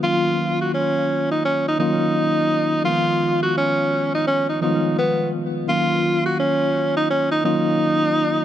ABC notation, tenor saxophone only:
X:1
M:4/4
L:1/16
Q:"Swing 16ths" 1/4=85
K:Ebm
V:1 name="Tenor saxophone"
F3 G D3 E D E E6 | F3 G D3 E D E E2 C2 z2 | F3 G D3 E D E E6 |]